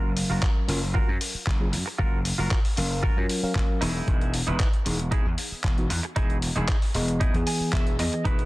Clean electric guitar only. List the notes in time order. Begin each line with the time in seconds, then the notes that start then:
Already playing: F4 F#4 A#4
0.30 F4 F#4 A#4
0.68 muted clean electric guitar stroke
0.94 F4 F#4 A#4
1.20 muted clean electric guitar stroke
1.72 muted clean electric guitar stroke
1.86 muted clean electric guitar stroke
1.98 F4 F#4 A#4
2.38 F4 F#4 A#4
2.77 muted clean electric guitar stroke
3.03 F4 F#4 A#4
3.29 muted clean electric guitar stroke
3.81 D#4 E4 G#4
4.47 D#4 E4 B4
4.85 muted clean electric guitar stroke
5.11 D#4 E4 G#4
5.38 muted clean electric guitar stroke
5.90 muted clean electric guitar stroke
6.03 muted clean electric guitar stroke
6.16 D#4 E4 G#4
6.56 D#4 E4 G#4
6.94 muted clean electric guitar stroke
7.20 D#4 E4 G#4
7.46 G#5, muted clean electric guitar stroke
7.73 E5
7.99 D#5, muted clean electric guitar stroke
8.12 muted clean electric guitar stroke
8.24 D#4 E4 B4